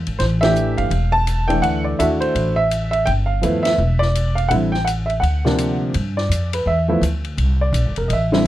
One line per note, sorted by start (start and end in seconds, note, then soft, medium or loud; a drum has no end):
0.07 0.19 G#1 medium
0.07 ride soft
0.19 0.74 A1 medium
0.19 0.24 C5 medium
0.19 snare soft
0.19 ride medium
0.41 0.89 E3 medium
0.41 0.89 A3 medium
0.41 0.89 D4 medium
0.41 0.89 G4 medium
0.41 0.78 E5 loud
0.41 snare medium
0.41 ride medium
0.56 hi-hat pedal soft
0.77 0.90 G1 medium
0.77 1.11 F5 medium
0.77 ride soft
0.90 1.59 E1 medium
0.90 ride medium
1.12 1.50 A5 loud
1.27 hi-hat pedal medium
1.27 ride medium
1.48 1.96 E3 medium
1.48 1.96 A3 medium
1.48 1.96 D4 medium
1.48 1.96 A4 medium
1.48 1.61 G5 medium
1.48 ride soft
1.62 1.96 D2 medium
1.62 1.83 F#5 loud
1.62 ride medium
1.84 1.97 D5 medium
1.99 2.33 D#2 medium
1.99 2.53 A3 medium
1.99 2.53 D4 medium
1.99 2.53 E4 medium
1.99 2.54 F#4 medium
1.99 2.04 E5 medium
1.99 hi-hat pedal medium
1.99 ride medium
2.20 2.58 C5 medium
2.20 ride soft
2.35 3.03 A1 medium
2.35 ride medium
2.56 2.90 E5 loud
2.71 hi-hat pedal medium
2.71 ride medium
2.91 3.05 E5 medium
2.91 ride soft
3.06 3.40 G1 medium
3.06 3.11 G5 loud
3.06 ride medium
3.26 3.65 F5 medium
3.41 3.77 D#2 medium
3.41 3.78 F3 medium
3.41 3.78 A3 soft
3.41 3.79 B3 medium
3.41 3.79 E4 medium
3.41 hi-hat pedal medium
3.41 ride medium
3.63 4.01 E5 medium
3.63 snare medium
3.63 ride medium
3.78 4.47 E1 medium
3.99 4.37 D5 loud
3.99 snare soft
4.15 hi-hat pedal medium
4.15 ride medium
4.35 4.50 F5 medium
4.35 ride soft
4.49 5.19 A1 medium
4.49 4.71 D3 medium
4.49 4.71 G3 medium
4.49 4.71 C4 medium
4.49 4.71 E4 medium
4.49 4.54 F#5 medium
4.49 ride medium
4.72 4.86 G5 medium
4.72 snare soft
4.85 4.90 F#5 medium
4.85 hi-hat pedal medium
4.85 ride medium
5.06 5.11 E5 medium
5.06 ride soft
5.20 5.90 D2 medium
5.20 5.75 F#5 medium
5.20 ride medium
5.45 5.91 C3 medium
5.45 5.92 F3 medium
5.45 5.92 A#3 medium
5.45 5.92 D4 medium
5.45 snare medium
5.58 hi-hat pedal medium
5.58 ride medium
5.94 6.28 G2 medium
5.94 ride medium
6.17 6.50 D5 medium
6.17 snare soft
6.29 6.64 F2 medium
6.29 hi-hat pedal medium
6.29 ride medium
6.53 6.66 B4 medium
6.53 ride medium
6.66 7.01 E2 medium
6.66 7.00 E5 medium
6.88 7.00 F3 medium
6.88 7.01 A3 medium
6.88 7.01 B3 medium
6.88 7.01 E4 medium
7.01 7.36 D2 medium
7.01 hi-hat pedal medium
7.01 ride medium
7.25 ride soft
7.37 7.72 C2 medium
7.37 ride medium
7.61 7.94 D5 medium
7.72 7.85 A#1 medium
7.72 hi-hat pedal medium
7.72 ride medium
7.85 7.97 G1 medium
7.96 8.09 E1 medium
7.96 8.10 A#4 medium
7.96 ride soft
8.08 8.44 A1 medium
8.08 8.10 D#5 medium
8.08 ride medium
8.13 8.45 E5 medium
8.32 8.44 D3 medium
8.32 8.44 G3 medium
8.32 8.45 C4 medium
8.32 8.45 E4 medium
8.32 snare medium